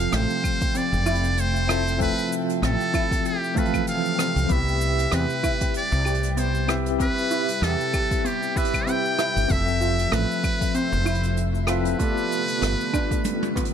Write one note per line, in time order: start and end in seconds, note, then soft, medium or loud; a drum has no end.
0.00 9.46 C3 medium
0.00 1.66 F3 medium
0.00 4.46 A3 medium
0.00 1.65 C4 medium
0.00 1.66 A4 medium
0.00 0.17 F5 loud
0.00 1.67 F5 loud
0.00 9.46 G5 medium
0.12 0.25 A1 loud
0.12 0.41 A3 medium
0.12 0.78 C5 loud
0.12 cross-stick medium
0.12 closed hi-hat medium
0.12 cabasa medium
0.30 cabasa soft
0.44 kick loud
0.44 closed hi-hat soft
0.44 cabasa medium
0.44 claves medium
0.60 kick loud
0.60 closed hi-hat medium
0.60 cabasa medium
0.75 1.03 C4 medium
0.75 1.42 D5 loud
0.75 closed hi-hat medium
0.75 cabasa medium
0.92 2.09 F1 loud
0.92 cabasa soft
1.06 1.35 E4 loud
1.06 closed hi-hat soft
1.06 cabasa medium
1.06 claves medium
1.15 closed hi-hat medium
1.23 closed hi-hat medium
1.23 cabasa soft
1.37 2.01 C5 loud
1.37 closed hi-hat medium
1.37 cabasa medium
1.56 cabasa soft
1.67 1.96 C4 medium
1.67 1.96 E4 medium
1.67 1.97 F4 medium
1.67 1.97 A4 medium
1.67 1.97 E5 loud
1.67 cross-stick medium
1.67 closed hi-hat soft
1.67 cabasa medium
1.67 claves medium
1.87 closed hi-hat medium
1.87 cabasa medium
1.99 3.53 F3 medium
1.99 2.28 A3 medium
1.99 3.52 C4 medium
1.99 9.46 G4 medium
1.99 3.54 A4 medium
1.99 2.35 B4 loud
1.99 3.54 E5 medium
1.99 kick loud
1.99 closed hi-hat medium
1.99 cabasa medium
2.19 cabasa soft
2.32 cabasa loud
2.49 closed hi-hat medium
2.49 cabasa soft
2.62 2.74 A1 loud
2.62 2.91 C4 medium
2.62 3.28 A4 loud
2.62 cross-stick medium
2.62 closed hi-hat medium
2.62 cabasa medium
2.81 cabasa soft
2.94 3.22 E4 medium
2.94 kick loud
2.94 closed hi-hat soft
2.94 cabasa medium
2.94 claves medium
3.11 kick loud
3.11 closed hi-hat medium
3.11 cabasa medium
3.25 3.60 G4 medium
3.25 closed hi-hat medium
3.25 cabasa medium
3.44 cabasa soft
3.55 4.46 E3 medium
3.55 4.47 F3 medium
3.55 3.85 A3 loud
3.55 4.46 C4 medium
3.55 4.47 A4 medium
3.55 3.88 B4 medium
3.55 4.48 F5 loud
3.55 kick loud
3.55 closed hi-hat soft
3.55 cabasa medium
3.66 closed hi-hat medium
3.74 kick medium
3.74 closed hi-hat medium
3.74 cabasa soft
3.74 claves medium
3.87 4.53 F5 loud
3.87 closed hi-hat medium
3.87 cabasa medium
4.05 cabasa soft
4.18 4.47 C4 medium
4.18 cross-stick medium
4.18 closed hi-hat soft
4.18 cabasa medium
4.36 4.45 C2 medium
4.36 closed hi-hat medium
4.36 cabasa medium
4.49 5.06 C2 medium
4.49 9.46 G3 medium
4.49 4.78 B3 medium
4.49 6.65 E4 medium
4.49 6.65 G4 medium
4.49 6.66 B4 medium
4.49 6.66 E5 loud
4.49 5.16 E5 loud
4.49 kick loud
4.49 closed hi-hat medium
4.49 cabasa medium
4.68 cabasa soft
4.81 cabasa medium
4.99 closed hi-hat medium
4.99 cabasa medium
5.12 5.24 E2 loud
5.12 5.41 C4 medium
5.12 5.76 B4 loud
5.12 cross-stick medium
5.12 closed hi-hat medium
5.12 cabasa medium
5.30 cabasa soft
5.43 5.72 E4 loud
5.43 kick loud
5.43 closed hi-hat soft
5.43 cabasa medium
5.43 claves medium
5.61 kick loud
5.61 closed hi-hat medium
5.61 cabasa medium
5.74 6.33 D5 loud
5.74 closed hi-hat medium
5.74 cabasa medium
5.92 7.08 C2 loud
5.92 cabasa soft
6.05 6.34 G4 medium
6.05 closed hi-hat medium
6.05 cabasa medium
6.05 claves medium
6.15 closed hi-hat medium
6.23 closed hi-hat medium
6.23 cabasa medium
6.33 6.66 B3 medium
6.33 6.40 D5 medium
6.33 closed hi-hat medium
6.38 6.74 C5 medium
6.38 cabasa medium
6.55 cabasa soft
6.68 6.96 C4 medium
6.68 6.96 E4 medium
6.68 6.97 G4 medium
6.68 6.97 B4 medium
6.68 6.97 E5 loud
6.68 cross-stick medium
6.68 closed hi-hat soft
6.68 cabasa medium
6.68 claves medium
6.86 closed hi-hat medium
6.86 cabasa soft
6.99 7.28 C4 medium
6.99 8.52 E4 medium
6.99 8.53 G4 medium
6.99 8.53 B4 medium
6.99 7.65 B4 loud
6.99 8.54 E5 medium
6.99 kick loud
6.99 closed hi-hat medium
6.99 cabasa medium
7.18 cabasa soft
7.31 7.60 E4 loud
7.31 cabasa medium
7.48 closed hi-hat medium
7.48 cabasa medium
7.62 7.74 E2 loud
7.62 8.28 A4 loud
7.62 cross-stick medium
7.62 closed hi-hat medium
7.62 cabasa medium
7.81 cabasa soft
7.94 8.22 G4 medium
7.94 kick loud
7.94 closed hi-hat soft
7.94 cabasa medium
7.94 claves medium
8.11 kick loud
8.11 closed hi-hat medium
8.11 cabasa medium
8.25 8.53 B3 medium
8.25 8.59 G4 medium
8.25 closed hi-hat medium
8.25 cabasa medium
8.43 cabasa soft
8.55 9.46 E4 medium
8.55 9.47 G4 medium
8.55 9.47 B4 medium
8.55 8.90 B4 loud
8.55 9.48 E5 loud
8.55 kick loud
8.55 closed hi-hat medium
8.55 cabasa medium
8.65 closed hi-hat medium
8.74 kick medium
8.74 closed hi-hat medium
8.74 cabasa soft
8.74 claves medium
8.87 9.16 C4 medium
8.87 9.52 G5 loud
8.87 closed hi-hat medium
8.87 cabasa medium
9.06 cabasa soft
9.18 9.47 E4 loud
9.18 cross-stick medium
9.18 closed hi-hat soft
9.18 cabasa medium
9.36 9.46 G1 medium
9.36 closed hi-hat medium
9.36 cabasa medium
9.48 10.05 F1 loud
9.48 11.98 C3 medium
9.48 11.65 F3 medium
9.48 11.98 F3 medium
9.48 13.73 A3 medium
9.48 11.64 C4 medium
9.48 11.66 A4 medium
9.48 10.15 E5 loud
9.48 11.98 E5 medium
9.48 11.66 E5 loud
9.48 kick loud
9.48 closed hi-hat medium
9.48 cabasa medium
9.68 cabasa soft
9.81 10.10 F4 medium
9.81 cabasa medium
9.99 closed hi-hat medium
9.99 cabasa medium
10.12 10.24 A1 loud
10.12 10.41 A3 medium
10.12 10.77 B4 loud
10.12 cross-stick medium
10.12 closed hi-hat medium
10.12 cabasa medium
10.31 cabasa soft
10.44 kick loud
10.44 closed hi-hat medium
10.44 cabasa medium
10.44 claves medium
10.61 kick loud
10.61 closed hi-hat medium
10.61 cabasa medium
10.74 11.03 C4 medium
10.74 11.43 C5 loud
10.74 closed hi-hat medium
10.74 cabasa medium
10.92 11.93 F1 loud
10.92 cabasa soft
11.05 11.34 E4 loud
11.05 closed hi-hat medium
11.05 cabasa medium
11.05 claves medium
11.15 closed hi-hat medium
11.23 closed hi-hat medium
11.23 cabasa medium
11.37 closed hi-hat medium
11.37 cabasa medium
11.55 cabasa soft
11.67 11.96 C4 loud
11.67 11.96 E4 medium
11.67 11.97 F4 medium
11.67 11.97 A4 medium
11.67 13.73 B4 loud
11.67 11.97 E5 loud
11.67 cross-stick medium
11.67 closed hi-hat medium
11.67 cabasa medium
11.67 claves medium
11.85 closed hi-hat medium
11.85 cabasa soft
11.97 13.73 D3 medium
11.97 13.73 G3 medium
11.97 12.28 A3 medium
11.97 13.52 B3 medium
11.97 13.73 B3 medium
11.97 13.52 F4 medium
11.97 13.73 F4 medium
11.97 13.53 G4 medium
11.97 13.53 A4 medium
11.97 13.53 D5 medium
11.97 kick loud
11.97 closed hi-hat medium
11.97 cabasa medium
12.17 cabasa soft
12.31 closed hi-hat soft
12.31 cabasa medium
12.48 closed hi-hat medium
12.48 cabasa medium
12.62 12.74 G1 loud
12.62 12.91 B3 medium
12.62 cross-stick medium
12.62 closed hi-hat medium
12.62 cabasa medium
12.81 cabasa soft
12.93 13.22 D4 loud
12.93 kick loud
12.93 closed hi-hat soft
12.93 cabasa medium
12.93 claves medium
13.11 kick loud
13.11 closed hi-hat medium
13.11 cabasa medium
13.24 closed hi-hat medium
13.24 high tom medium
13.24 cabasa medium
13.43 high tom medium
13.43 cabasa soft
13.56 13.73 B3 medium
13.56 kick loud
13.56 closed hi-hat medium
13.56 high tom medium
13.56 cabasa medium
13.65 closed hi-hat medium